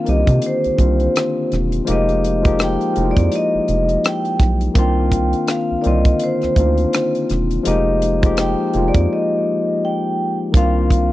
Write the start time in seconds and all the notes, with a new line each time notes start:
Already playing: D#3 A#3 C4 D4 F4
0.05 C2 D3 D#3 A#3 C4, closed hi-hat
0.09 G4 D#5
0.27 C3, kick, closed hi-hat
0.42 closed hi-hat
0.47 C5
0.64 C2, closed hi-hat
0.77 C2 D#3 A#3 C4 D4, kick, closed hi-hat
0.81 F4
1.00 closed hi-hat
1.16 cross-stick, closed hi-hat
1.52 E1, cross-stick, closed hi-hat
1.72 closed hi-hat
1.85 F1 F3 G#3 A#3 D#4, closed hi-hat
1.90 G4 D#5
2.09 closed hi-hat
2.24 closed hi-hat
2.42 F3 G#3 A#3 D#4, kick, closed hi-hat
2.47 G4
2.59 cross-stick, closed hi-hat
2.64 G5
2.81 closed hi-hat
2.93 F3 G#3 A#3 D#4, closed hi-hat
2.97 F1 E4
3.04 F4
3.11 D5
3.17 F2, kick, closed hi-hat
3.32 D#5, closed hi-hat
3.55 F1
3.68 F1, closed hi-hat
3.89 closed hi-hat
4.04 G5, cross-stick, closed hi-hat
4.25 closed hi-hat
4.40 B1, kick, cross-stick, closed hi-hat
4.61 closed hi-hat
4.74 C2 D#3 A#3 C4 D4, kick, closed hi-hat
4.79 F4 G5
5.12 kick, closed hi-hat
5.33 closed hi-hat
5.47 F5, cross-stick, closed hi-hat
5.71 C2
5.81 D#3 A#3 C4 D5, closed hi-hat
5.86 C2 D3 F4 D#5
6.05 kick, closed hi-hat
6.19 closed hi-hat
6.24 C5
6.42 D2, cross-stick, closed hi-hat
6.55 D2 A#3 C4 D4 D#4, kick, closed hi-hat
6.60 F4
6.78 closed hi-hat
6.93 cross-stick, closed hi-hat
7.15 closed hi-hat
7.29 E1, cross-stick, closed hi-hat
7.51 closed hi-hat
7.63 F1 F3 G#3 A#3 D#4, closed hi-hat
7.68 G4 D#5
8.02 closed hi-hat
8.22 F3 G#3 A#3 D#4, kick, closed hi-hat
8.26 G4
8.37 G5, cross-stick, closed hi-hat
8.73 F1 F3 G#3 A#3 D#4, closed hi-hat
8.77 F4
8.88 D5
8.94 F2, kick, closed hi-hat
9.13 D#5
9.85 G5
10.52 C2 D#3 A#3 C4 D4, kick, closed hi-hat
10.57 F4 F5
10.90 kick, closed hi-hat